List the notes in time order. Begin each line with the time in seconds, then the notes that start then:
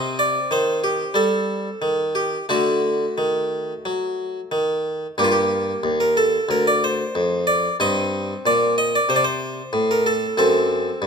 Already playing: C3 C4 D#5
0.19 D5
0.51 D#3 C5
0.84 G4
1.14 G3 A4
1.82 D#3
2.15 G4
2.49 D3 A3 F#4
3.18 D#3
3.85 F#3
4.52 D#3
5.18 G2 A#3 G4
5.24 F4
5.32 G4
5.83 D#2
6.00 A#4
6.17 A4
6.49 D2 A#4
6.67 D5
6.84 C5
7.15 F2
7.47 D5
7.80 G2 C4 D#5
8.46 A#2 D5
8.78 D#5
8.95 D5
9.09 C3 C5
9.16 D5
9.24 C5
9.73 A2
9.91 A#4
10.06 A4
10.38 F#2 C4 A4
11.02 G2